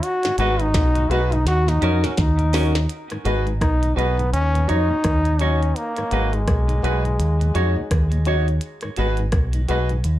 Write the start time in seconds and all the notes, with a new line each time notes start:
0.03 F#4, closed hi-hat
0.23 G#2 D#3, snare, closed hi-hat
0.38 G#1 G#3 B3 F#4 G#4 B4 D#5, closed hi-hat
0.60 G#2 D#3 D#4, closed hi-hat
0.74 B1, kick, snare, closed hi-hat
0.95 G#2 D#3, closed hi-hat
1.10 B1 G#3 B3 F#4 G#4 B4 D#5, closed hi-hat
1.31 G#2 D#3 D#4, muted clean electric guitar stroke, closed hi-hat
1.45 D#2 F#4, snare, closed hi-hat
1.67 D#2 A#2 D#4, snare, closed hi-hat
1.82 F2 F#3 C#4 D#4 F#4 A#4 C#5, closed hi-hat
2.03 D#2 A#2 C#4 F#4 A#4, snare, closed hi-hat
2.17 D#2 D#4, kick, snare, closed hi-hat
2.39 D#2 A#2, closed hi-hat
2.53 F#3 C#4 D#4 F#4 A#4 C#5, snare, open hi-hat
2.75 snare, closed hi-hat
2.89 closed hi-hat
3.10 G#2 D#3, cross-stick, closed hi-hat
3.25 G#1 G#3 B3 F#4 G#4 B4 D#5, closed hi-hat
3.46 G#2 D#3, closed hi-hat
3.61 B1 D#4, kick, cross-stick, closed hi-hat
3.82 G#2 D#3, closed hi-hat
3.96 B1 G#3 B3 F#4 G#4 B4 D#5, closed hi-hat
4.18 G#2 D#3, closed hi-hat
4.33 D#2 C#4, closed hi-hat
4.55 D#2 A#2, closed hi-hat
4.67 F2 F#3 C#4 D#4 F#4 C#5 D#5, closed hi-hat
4.89 D#2 A#2 F#4 C#5
5.04 D#2, kick, cross-stick, closed hi-hat
5.25 D#2 A#2, closed hi-hat
5.39 F#3 C#4 D#4 F#4 C#5 D#5, closed hi-hat
5.63 muted clean electric guitar stroke, closed hi-hat
5.76 A#3, closed hi-hat
5.97 G#2 D#3, cross-stick, closed hi-hat
6.11 G#1 G#3 B3 F#4 G#4 B4 D#5, closed hi-hat
6.33 G#2 D#3 G#3, closed hi-hat
6.48 B1, kick, cross-stick, closed hi-hat
6.68 G#2 D#3, closed hi-hat
6.82 B1 G#3 B3 F#4 G#4 B4 D#5, closed hi-hat
7.05 G#2 D#3, closed hi-hat
7.19 D#2, closed hi-hat
7.41 D#2 A#2, closed hi-hat
7.54 F2 F#3 C#4 D#4 F#4 C#5 D#5, closed hi-hat
7.76 D#2 A#2 F#4 C#5
7.91 D#2, kick, cross-stick, closed hi-hat
8.12 D#2 A#2, closed hi-hat
8.25 F#3 C#4 D#4 F#4 C#5 D#5, closed hi-hat
8.48 closed hi-hat
8.61 closed hi-hat
8.81 G#2 D#3, cross-stick, closed hi-hat
8.96 G#1 G#3 B3 F#4 G#4 B4 D#5, closed hi-hat
9.17 G#2 D#3, closed hi-hat
9.32 B1, kick, cross-stick, closed hi-hat
9.53 G#2 D#3, closed hi-hat
9.68 B1 G#3 B3 F#4 G#4 B4 D#5, closed hi-hat
9.89 G#2 D#3, closed hi-hat
10.04 D#2, closed hi-hat